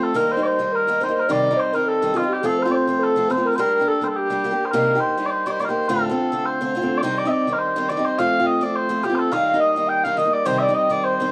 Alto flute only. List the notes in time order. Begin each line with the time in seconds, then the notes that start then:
0.15 A#4
0.32 C5
0.45 C5
0.72 A#4
1.01 C5
1.29 D5
1.57 C5
1.73 A#4
1.86 A4
2.15 F4
2.29 G4
2.43 A4
2.59 C5
2.72 C5
2.99 A4
3.29 C5
3.45 A#4
3.58 A#4
3.88 A4
4.16 G4
9.31 F5
9.47 F5
9.59 D#5
9.88 G5
10.04 F5
10.18 D#5
10.33 D5
10.46 C5
10.61 D5
10.75 D#5
11.04 C5
11.19 C5